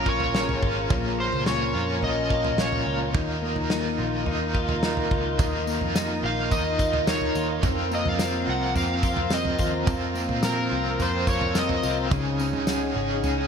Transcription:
Already playing: A#1 A#2 F3 A#3 C#4 F4 A#4 C#5 A#5
0.06 F4 C#5, kick
0.20 floor tom
0.34 C#4 G#4, snare
0.49 floor tom
0.61 G#1 A#3 C#4 F4, kick
0.90 A#1 A#2 F3 A#3 C#4 F4, kick, floor tom
1.18 A#3 C5
1.33 C#2, floor tom
1.46 C#4 C#5, snare
1.73 F2 A#3 C#4 F4
2.01 A#1 A#2 F3 A#3 C#4 D#5, floor tom
2.05 C#4 F4
2.30 F4, kick
2.45 floor tom
2.58 C#4 C#5, snare
2.72 floor tom
2.86 C#2 F4
3.13 D#2 D#3 A#3 F4 A#4 D#5, kick, floor tom
3.17 D#4 F4
3.42 A#3
3.56 D#2, floor tom
3.70 D#4, snare
3.98 A#1 F4
4.24 D#2 D#3 A#3 D#4, floor tom
4.28 D#4 F4
4.54 F4, kick
4.69 floor tom
4.82 D#4, snare
4.97 floor tom
5.11 C#2 F4, kick
5.39 D#2 D#3 A#3 D#4 F4, kick, floor tom, tambourine
5.67 A#3, tambourine
5.81 F2, floor tom
5.94 D#4, snare, tambourine
6.22 A#1 A#3 D#4 F4 F5
6.49 D#2 D#3 A#3 D#4 D#5, kick, floor tom, tambourine
6.53 D#4 F4
6.79 F4, kick, tambourine
6.93 floor tom
7.07 D#4 A#4 C#5, snare, tambourine
7.21 floor tom
7.35 D#2 F4, tambourine
7.61 F2 F3 A#3 C4 F4 A#4 C5, kick, floor tom, tambourine
7.91 A#3 D#5, tambourine
8.05 F2 F5, floor tom
8.19 C4, snare, tambourine
8.45 C2 A#3 C4 F4
8.50 F#5
8.74 F2 F3 A#3 C4 F5, floor tom, tambourine
8.79 F4
9.03 F4, kick, tambourine
9.16 floor tom
9.30 C4 D#5, snare, tambourine
9.45 floor tom
9.58 D#2 F4, kick, tambourine
9.86 F2 F3 A#3 C4 F4 F5, kick, floor tom, tambourine
10.14 A#3, tambourine
10.29 A#2, floor tom
10.42 C4 A#4, snare, tambourine
10.70 C2 A#3 C4 F4
10.98 F2 F3 A#3 C4 F4 C5, floor tom, tambourine
11.27 F4 C#5, kick, tambourine
11.41 floor tom
11.55 C4 D#5, snare, tambourine
11.69 floor tom
11.82 C2 A#3 C4 F4, tambourine
12.10 C#2 C#3 G#3 C#4 D#4 G#4 C#5 G#5, kick, floor tom, tambourine
12.39 C#4, tambourine
12.53 C#2, floor tom
12.67 D#4 F#5, snare, tambourine
12.94 G#1 C#4 D#4 G#4
13.23 C#2 C#3 G#3 C#4 D#4 G#4, floor tom, tambourine
13.38 D#4

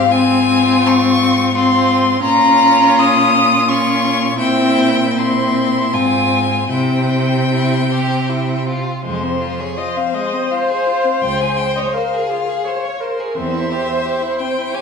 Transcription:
Already playing: G#2 F5
0.10 C4 F4 G#5
0.87 C#6
1.54 C4 F4 C6
2.22 A#2 C#4 F4 A#5
2.99 D#6
3.68 C#4 F4 C#6
4.38 A#2 C4 E4 G5
5.17 C4 E4 C6
5.92 G#2 C4 F4 G#5
6.70 C3 C4 E4 G5
7.52 E4
7.91 G4
8.29 E4
8.68 F4
9.04 F2 G#3 C5
9.23 C4
9.41 F4
9.60 G#4 C#5
9.77 F4 C5 D#5
9.97 C4 F5
10.14 G#3 D#5
10.33 C4
10.51 F4 F5
10.69 G#4
10.86 F4
11.04 C4
11.21 C#2 F4 G5
11.41 G#4 G#5
11.57 C5 G5
11.76 C#5 D#5
11.93 A#4 C5 F5
12.13 G#4
12.28 F4 G#4
12.49 G#4
12.64 C5 C#5
12.85 C#5
13.00 A#4 C5
13.20 G#4
13.35 E2 C4 C5 E5
13.54 E4
13.71 G4
13.87 C5
14.05 G4
14.22 E4
14.40 C4 G5
14.58 E4
14.74 G4 C#5 G#5

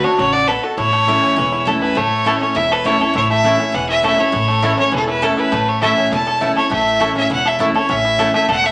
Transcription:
Already playing: A3 F#4 A4
0.04 D4 F#4 C#5
0.18 A1 C#3 F#3 C#5
0.32 F#4 D5
0.48 B2 A4 B4
0.63 F#4 A4
0.77 A1 A2 E4 C#5
0.93 A3
1.07 E3 A3 C#4 E4
1.23 C#4
1.36 E1 E2 E3
1.52 E4
1.65 E3 A3 C#4 E4 A4
1.82 E4 B4
1.95 A1 A2 A3 C#5
2.24 E3 A3 C#4 E4 A4 C#5 A5
2.40 C#4 E4 C#5
2.55 E1 E2 E4 E5
2.72 A4 B4
2.84 E3 A3 C#4 E4 C#5 A5
2.99 C#4 E4 A4
3.13 A1 A2 E4 C#5
3.30 A3 E5
3.43 E3 A3 C#4 E4 C#5 A5
3.57 C#4 E4
3.72 E1 E2 E3 F#5
3.89 E4 E5
4.02 E3 A3 C#4 E4 A4 C#5 E5 A5
4.18 C#4 E4 C#5
4.32 A1 A2 E4
4.48 A3
4.62 E3 A3 C#4 E4 C#5 A5
4.77 C#4 E4 C#5
4.92 E1 E2 E3 A4
5.08 E4 B4
5.22 E3 A3 C#4 E4 A4 C#5 A5
5.37 E4 B4
5.52 A1 A2 A3
5.68 C#5
5.82 E3 A3 C#4 E4 A4 C#5 E5 A5
5.98 C#4
6.12 E1 E2 E4 A5
6.27 A4
6.41 E3 A3 C#4 E4 C#5 A5
6.56 C#4 E4 A4 C#5
6.70 A1 A2 A3 E5
7.00 E3 A3 C#4 E4 A4 C#5 A5
7.14 C#4 E4 E5
7.30 E1 E2 E4 F#5
7.45 A4 E5
7.59 E3 A3 C#4 E4 C#5 A5
7.74 C#4 E4 A4 C#5
7.89 A1 A2 C#4 E5
8.05 E4
8.18 E3 A3 C#4 E4 A4 C#5 A5
8.34 A3 C#4 E4 E5
8.48 E1 E2 A4 F#5
8.64 A3 E5

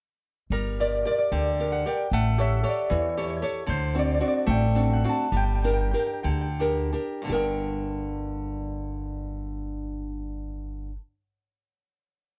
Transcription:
0.50 G1 G3 A#4
0.80 G4 A#4 D5
0.90 D5
0.95 D5
1.03 G4 A#4 D5
1.11 D5
1.18 D5
1.32 D2 D3 G5
1.60 G4 A#4 D5
1.72 F#5
1.86 G4 A#4 D5 G5
2.11 A1 A3 F#5
2.38 G4 A4 C#5 E5
2.63 G4 A4 C#5
2.68 D5
2.90 E2 E3 C#5
3.02 C#5
3.09 C#5
3.17 G4 A4 C#5
3.24 C#5
3.30 C#5
3.37 C#5
3.42 G4 A4 C#5
3.67 D2 D3 C5
3.95 C4 D4 F#4
3.99 D5
4.05 D5
4.14 D5
4.20 C4 D4 F#4 D5
4.28 D5
4.37 D5
4.47 A1 A3 G5
4.75 C4 D4 F#4
4.93 F#5
5.04 C4 D4 F#4
5.09 A5
5.32 G1 G3
5.36 G5
5.46 G5
5.55 G5
5.62 D4 G4 A#4 G5
5.73 G5
5.81 G5
5.91 D4 G4 A#4 G5
5.99 G5
6.06 G5
6.13 G5
6.23 D2 D3 G5
6.31 G5
6.41 G5
6.60 D4 G4 A#4
6.93 D4 G4 A#4
7.22 G2 D3
7.27 G1 D4 G4
7.32 A#4 G5

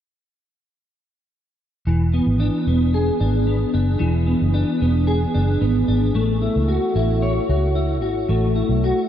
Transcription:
1.87 E1 E3
2.14 B3
2.27 G#1
2.40 D4
2.67 E1 B3
2.94 G#4
3.20 G#1 D4
3.47 B3
3.74 F#1 D4
3.99 E1 E3
4.27 B3
4.42 F#1
4.54 D4
4.82 E1 B3
5.07 G#4
5.34 F#1 D4
5.61 G#1 B3
5.88 G#1 D4
6.15 A1 A3
6.42 E4
6.56 C#2
6.68 F#4
6.95 A1 E4
7.22 C#5
7.49 C#2 F#4
7.75 E4
8.02 G#1 F#4
8.29 A1 A3
8.56 E4
8.69 B1
8.84 F#4

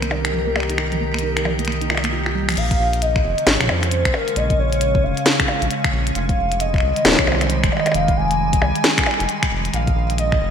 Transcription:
Already playing: C2 D#3 A#3 G4 A#4
0.02 A#3, finger snap, closed hi-hat
0.11 D#4, percussion blips
0.25 D#4, finger snap, closed hi-hat
0.33 F3
0.47 A#3
0.56 A#3 G4, finger snap, percussion blips
0.60 finger snap
0.63 finger snap
0.70 D#4, closed hi-hat
0.78 D#4 A#4, finger snap
0.92 F3, closed hi-hat
1.00 A#3
1.14 A#3, finger snap
1.19 closed hi-hat
1.23 D#4
1.37 D#4, finger snap, closed hi-hat
1.45 F3, percussion blips
1.59 A#3, closed hi-hat
1.65 A#3, finger snap, closed hi-hat
1.72 closed hi-hat
1.81 D#4, closed hi-hat
1.90 F4, finger snap, percussion blips
1.95 finger snap, percussion blips
1.97 percussion blips
2.04 A#3, finger snap, closed hi-hat
2.12 F4
2.26 F4, finger snap
2.35 G3
2.49 F3, finger snap, closed hi-hat
2.50 closed hi-hat
2.52 closed hi-hat
2.54 closed hi-hat
2.55 A#1 G#3 F5, closed hi-hat
2.57 C#3 C#4, closed hi-hat, crash
2.71 kick, closed hi-hat
2.80 A#1
2.93 closed hi-hat
3.02 D#5, closed hi-hat
3.16 finger snap, kick
3.24 F1
3.38 closed hi-hat
3.47 G#1 C#5, snare, closed hi-hat, percussion blips
3.61 finger snap, kick, closed hi-hat
3.62 kick
3.64 kick
3.66 kick
3.67 F2 C5, finger snap, kick, percussion blips
3.83 finger snap, closed hi-hat
3.91 closed hi-hat
4.05 A#1, finger snap, kick, closed hi-hat
4.14 A#4, percussion blips
4.28 closed hi-hat
4.36 A#1 D#5, closed hi-hat
4.50 kick, closed hi-hat
4.59 A#1 C#5
4.73 closed hi-hat
4.81 closed hi-hat
4.95 kick
5.03 F1 F5
5.17 closed hi-hat
5.26 snare, closed hi-hat
5.40 finger snap, kick, closed hi-hat
5.48 percussion blips
5.62 A#1, closed hi-hat
5.71 closed hi-hat
5.84 finger snap, kick, closed hi-hat
5.93 A#1
6.07 closed hi-hat
6.15 F1 D#3 G3 F5, closed hi-hat
6.29 kick, closed hi-hat
6.38 F1
6.52 closed hi-hat
6.60 D#5, closed hi-hat
6.74 finger snap, kick
6.76 finger snap
6.78 finger snap
6.80 C2, finger snap
6.96 closed hi-hat
7.05 D#1 C#5, snare, closed hi-hat, percussion blips
7.08 snare
7.12 snare
7.15 finger snap, kick, snare
7.27 C2 C5, finger snap, percussion blips
7.32 percussion blips
7.35 percussion blips
7.41 finger snap, closed hi-hat, percussion blips
7.47 closed hi-hat, percussion blips
7.64 F1, finger snap, kick, closed hi-hat
7.72 D#5, percussion blips
7.77 percussion blips
7.80 percussion blips
7.86 closed hi-hat, percussion blips
7.92 F1 F5, closed hi-hat, percussion blips
8.08 kick, closed hi-hat
8.17 F1 G#5
8.31 closed hi-hat
8.53 kick, closed hi-hat
8.62 C2 G#5, percussion blips
8.76 closed hi-hat
8.84 snare, closed hi-hat
8.98 finger snap, kick, closed hi-hat
9.04 finger snap
9.06 finger snap, percussion blips
9.11 finger snap
9.14 finger snap
9.20 F1, closed hi-hat
9.29 closed hi-hat
9.43 finger snap, kick, closed hi-hat
9.51 F1
9.65 closed hi-hat
9.74 A#1 C#3 C#4 F5, closed hi-hat
9.87 kick, closed hi-hat
9.96 A#1
10.10 closed hi-hat
10.18 D#5, closed hi-hat
10.32 finger snap, kick
10.41 F1

